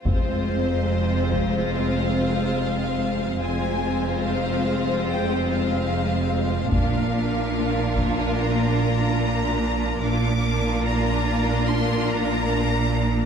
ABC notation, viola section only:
X:1
M:4/4
L:1/8
Q:1/4=72
K:Fdor
V:1 name="Viola section"
[A,C]8 | [A,C]8 | [B,D]8 | [B,D]8 |]